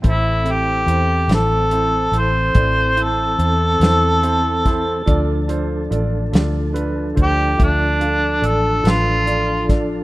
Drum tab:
HH |xxxxxxxxxxxx|xxxxxxxxxxxx|
SD |---o-----o-o|---o-----o-o|
BD |o-----o----o|o----oo----o|